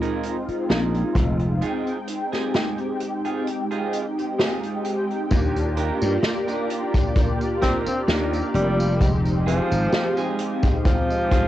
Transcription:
Already playing: G#3 C4 D#4 F4
0.02 D#4 G#4 A#4, closed hi-hat
0.23 closed hi-hat
0.48 muted slap bass stroke, closed hi-hat
0.69 A#1 D#4 G#4 A#4, snare, closed hi-hat
0.94 closed hi-hat
1.15 F1, kick, closed hi-hat
1.39 closed hi-hat
1.61 G#3 C4 D#4 F4 G#4 G5, closed hi-hat
1.87 closed hi-hat
2.08 closed hi-hat
2.32 G#3 C4 D#4 F4 G4 G#4, snare, closed hi-hat
2.54 snare, closed hi-hat
2.78 closed hi-hat
3.00 closed hi-hat
3.25 D#4 F4 G#4, closed hi-hat
3.47 closed hi-hat
3.71 D#4 F4 G#4, closed hi-hat
3.93 closed hi-hat
4.18 closed hi-hat
4.38 D#4 F4 G#4, snare, closed hi-hat
4.63 closed hi-hat
4.84 G#3 C4 D#4 G5, closed hi-hat
5.10 closed hi-hat
5.31 D#2 A#3 D4 F4 G4 A#4 G5 A#5 D6, kick, closed hi-hat, tambourine
5.56 closed hi-hat, tambourine
5.77 D4 D#4 G4 A#4, closed hi-hat
6.01 G2 A#3 F4 G4 D5, closed hi-hat, tambourine
6.23 snare, closed hi-hat, tambourine
6.47 D4 D#4 G4 A#4, closed hi-hat, tambourine
6.70 closed hi-hat
6.94 kick, closed hi-hat, tambourine
7.15 F6, kick, closed hi-hat, tambourine
7.41 closed hi-hat, tambourine
7.62 C4 D4 D#4 G4 A#4, kick, snare, closed hi-hat
7.87 C4, muted slap bass stroke, closed hi-hat, tambourine
8.08 D#2 D4 D#4 G4 A#4, snare, closed hi-hat, tambourine
8.33 closed hi-hat, tambourine
8.54 F1 G3, closed hi-hat
8.79 closed hi-hat, tambourine
9.00 G#3 C4 D#4 G4 F5 C6 D#6, kick, closed hi-hat, tambourine
9.25 closed hi-hat, tambourine
9.46 F3 C4 D#4 F4 G#4, closed hi-hat
9.71 G#1 G#3 C4 D#4 G4, closed hi-hat, tambourine
9.93 snare, closed hi-hat, tambourine
10.17 C4 D#4 F4 G#4, closed hi-hat, tambourine
10.39 closed hi-hat
10.63 kick, closed hi-hat, tambourine
10.85 F3 A#5, kick, closed hi-hat, tambourine
11.10 closed hi-hat, tambourine
11.31 C4 D#4 F4 G#4, kick, closed hi-hat

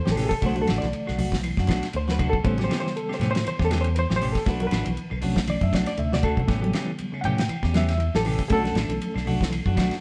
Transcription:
0.05 A1 C#4 G4, muted clean electric guitar stroke, snare, high conga
0.11 A4
0.16 E3 A3 C#4 G4, snare, open hi-hat, low conga, claves
0.25 G#4
0.29 A4, kick, ride bell
0.42 B1 C#3 D3 A3 D4 F#4, kick, ride bell
0.46 C5
0.55 F#3 D4 F#4, high conga
0.62 A4
0.67 A1 A3 D4 F#4, snare, ride bell, claves
0.78 E3 D5, ride bell
0.83 B1, snare
0.93 ride bell
1.07 B1 D3 F#4, snare, claves
1.18 A3 F#4, open hi-hat, high conga, low conga
1.32 kick, snare
1.44 E3, ride bell, claves
1.57 F#2 D4 F#4, kick, snare
1.67 B1 F#3 A3 D4 F#4, kick, snare, ride bell, high conga, claves
1.83 snare, ride bell
1.93 D2 D3 C5, ride bell
2.08 D4 F#4 B4, snare, high conga
2.19 D3 A3 D4 F#4, kick, ride bell, high conga, low conga, claves
2.29 A4, kick
2.34 B1
2.43 A1 C#3 E3 G3 A3 B3 C#4 C5, muted clean electric guitar stroke, kick, ride bell
2.58 F#3 A3 C#4 G4, snare, high conga
2.64 C5
2.69 E3 A3 C#4 G4, snare, ride bell, claves
2.80 E3 C5
2.87 snare
2.96 A4, ride bell
3.09 C#3 A3 G4, snare, claves
3.14 C5
3.20 A2 E3 A3 C#4 G4, snare, ride bell, high conga, low conga
3.31 C5
3.35 snare, ride bell
3.45 E3 C5, muted fingered electric bass stroke, ride bell, claves
3.59 E2 A3 C#4 G4, kick, snare
3.65 A4
3.70 E3 G3 A3 C#4 G4, snare, ride bell, high conga, claves
3.81 C5, ride bell
3.95 E3 B4 C5, ride bell
4.10 A1 A3 C#4 G4, snare, high conga
4.16 C5
4.21 E3 A3 C#4 G4, open hi-hat, low conga, claves
4.32 A4, kick, ride bell
4.36 snare
4.46 B1 A3 D4 F#4 B4, kick, snare, ride bell
4.60 F#3 D4 F#4 A#4, high conga
4.67 B4
4.71 A1 A3 D4 F#4, snare, ride bell, claves
4.85 B1 E3, ride bell, high conga
4.97 ride bell
5.10 B1 D3, muted clean electric guitar stroke, claves
5.21 D3 A3 C#4 D4 F#4, open hi-hat, high conga, low conga
5.36 kick, snare
5.47 E3 D5, ride bell, high conga, claves
5.61 F#2 D4 E5, muted clean electric guitar stroke, kick, high conga
5.72 B1 A3 D4 F#4 D5, muted clean electric guitar stroke, kick, snare, ride bell, high conga, claves
5.86 D5, snare, ride bell
5.97 D2 D3 E5, ride bell, low conga
6.12 D4 F#4 D5, snare, low conga
6.23 D3 A3 D4 F#4 A4, kick, ride bell, claves
6.37 B1, kick, low conga
6.46 A1 C#3 E3 G3 A3 B3 C#4 G4, kick, snare, ride bell
6.62 F#3 A3 C#4 G4, high conga
6.73 E3 A3 C#4 G4, snare, ride bell, claves
6.86 E3
6.99 ride bell, high conga
7.12 C#3 A3 C#4, claves
7.21 A2 E3 F#5, ride bell
7.25 A3 C#4 G4 G5, high conga, low conga
7.38 snare, ride bell
7.49 E3, muted fingered electric bass stroke, ride bell, claves
7.63 E2 A3 C#4 G4, kick, snare
7.74 C#3 E3 G3 A3 B3 C#4 G4 E5, snare, ride bell, high conga, claves
7.89 E5, snare, ride bell
7.98 E3, ride bell
8.14 A1 C#4 G4 A4, muted clean electric guitar stroke, snare, high conga
8.25 E3 A3 C#4 G4, open hi-hat, low conga, claves
8.39 kick, ride bell
8.48 B1 D3 A3 C#4 D4 F#4 G#4, kick, ride bell
8.52 A4
8.63 F#3 D4 F#4, snare, high conga
8.75 A1 A3 D4, muted clean electric guitar stroke, snare, ride bell, claves
8.89 B1 E3, ride bell
9.01 ride bell, high conga
9.14 B1 D3 D4, snare, claves
9.26 A3 D4 F#4, open hi-hat, high conga, low conga
9.41 kick, snare
9.50 E3, ride bell, claves
9.66 F#2 D4 F#4, kick
9.75 B1 F#3 A3 D4 F#4, kick, snare, ride bell, high conga, claves
9.91 snare, ride bell

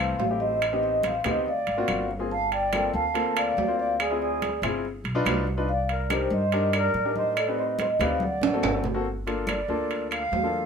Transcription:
Already playing: C2 E3 A3 C4 A4 C5 F5
0.18 A1 C5 F5, high conga, low timbale
0.30 A3 C4 E4 G4
0.39 C5 D#5
0.62 high conga, high timbale, claves
0.73 B3 C4 D#4 G4
0.82 C5 D#5, high conga
1.03 C5 F5, high conga, high timbale
1.24 D2 B3 C4 D#4 G4 C5 D#5, high conga, low conga, high timbale, claves
1.46 D5 F5, high conga
1.67 G#1, high conga, high timbale
1.77 A#3 C4 F4 F#4
1.88 G1, high conga, high timbale, claves
2.11 high conga
2.19 A#3 C4 F4 G#4
2.31 F5 A5, high conga
2.52 D5 G5, high conga, high timbale
2.73 A#3 C4 F4 A4, high conga, high timbale, claves
2.93 D2 F5 A5, high conga
3.14 A#3 C4 F4 A4, high conga, high timbale
3.37 D5 F5, high conga, high timbale, claves
3.57 D2, high conga, low timbale
3.68 A#3 C4 F4 C5
3.79 D5 F5
4.00 G#4 D5, high conga, high timbale, claves
4.10 C4 E4 F4 G#4
4.21 G#4 D5, high conga
4.42 high conga, high timbale
4.62 G1 C4 E4 F4 G#4, high conga, low conga, high timbale, claves
4.85 high conga
5.04 B1, high conga, high timbale
5.15 D4 D#4 F4 B4
5.25 C2, high conga, high timbale, low timbale, claves
5.47 high conga
5.57 D4 D#4 F4 B4
5.69 D5 F5, high conga
5.89 A#4 D5, high conga, high timbale
6.10 D4 D#4 G4 A#4 C5, high conga, high timbale, claves
6.30 G2 C5 D#5, high conga
6.52 D4 D#4 G4 A#4, high conga, high timbale
6.73 A#4 D5, high timbale, claves
6.94 A2, high conga
7.05 D4 D#4 G4 A#4
7.16 C5 D#5, high conga
7.36 A4 D5, high conga, high timbale, claves
7.48 C4 D#4 G4 B4
7.57 C5 D#5, high conga
7.79 C5 D#5, high conga, high timbale
7.99 D2 C4 D#4 G4 B4 D5, high conga, low conga, high timbale, claves
8.20 D5 F#5, high conga
8.41 A1, high conga, high timbale
8.53 A#3 C4 F#4 A4
8.63 G1, low conga, high timbale, claves
8.84 low conga, low timbale
8.94 A#3 C4 F#4 A4
9.05 high conga
9.26 A#3 D4 F4 A4, high conga, high timbale
9.47 D5, high conga, high timbale, claves
9.68 D2 A#3 D4 F4 A4, high conga
9.90 high conga, high timbale
10.11 F5, high conga, high timbale, claves
10.32 E2, high conga, low timbale
10.43 A#3 D4 F4 A4

